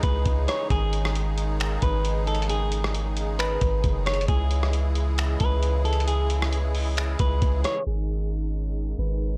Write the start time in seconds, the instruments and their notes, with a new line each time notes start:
Already playing: accordion C#3 E3 G#3 D#4 G#4
0.03 808-style bass C#2, clean electric guitar B4, kick, closed hi-hat
0.26 808-style bass C#2, kick, closed hi-hat
0.48 clean electric guitar C#5, cross-stick, closed hi-hat
0.70 808-style bass G#1, accordion D#3, clean electric guitar G#4, kick, closed hi-hat
0.93 closed hi-hat
1.05 cross-stick
1.15 closed hi-hat
1.38 closed hi-hat
1.60 finger snap, closed hi-hat
1.82 808-style bass G#1, clean electric guitar B4, kick, closed hi-hat
2.05 closed hi-hat
2.27 clean electric guitar A4, closed hi-hat
2.35 closed hi-hat
2.42 closed hi-hat
2.49 clean electric guitar G#4, closed hi-hat
2.72 closed hi-hat
2.84 cross-stick
2.95 closed hi-hat
3.17 closed hi-hat
3.39 clean electric guitar B4, finger snap, closed hi-hat
3.61 808-style bass G#1, kick, closed hi-hat
3.84 808-style bass F#1, kick, closed hi-hat
4.06 clean electric guitar C#5, cross-stick, closed hi-hat
4.14 closed hi-hat
4.21 closed hi-hat
4.28 808-style bass C#2, accordion C#3 E3 E4, clean electric guitar G#4, kick, closed hi-hat
4.51 closed hi-hat
4.63 cross-stick
4.73 closed hi-hat
4.95 closed hi-hat
5.18 finger snap, closed hi-hat
5.40 808-style bass C#2, clean electric guitar B4, kick, closed hi-hat
5.63 closed hi-hat
5.85 clean electric guitar A4, closed hi-hat
5.93 closed hi-hat
6.00 closed hi-hat
6.08 clean electric guitar G#4, closed hi-hat
6.30 closed hi-hat
6.42 cross-stick
6.53 closed hi-hat
6.75 open hi-hat
6.97 finger snap, closed hi-hat
7.19 808-style bass C#2, clean electric guitar B4, kick, closed hi-hat
7.42 808-style bass C#2, kick, closed hi-hat
7.64 clean electric guitar C#5, cross-stick, closed hi-hat
7.87 808-style bass G#1, accordion C#3 D#3 G#3 D#4 G#4, clean electric guitar G#4
8.99 808-style bass G#1, clean electric guitar B4